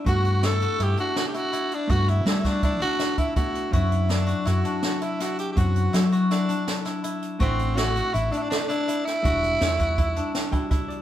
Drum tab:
HH |xxxxxxxxxx|xxxxxxxxxx|xxxxxxxxxx|xxxxxxxxxx|
SD |--o---o---|--oo--o---|--o-o-o-o-|--o-o-oo--|
BD |o---------|o--oo--oo-|o---------|o---------|

HH |xxxxxxxxxx|xxxxxxxxxx|
SD |--o---o--o|--o---o---|
BD |o---------|o--oo--oo-|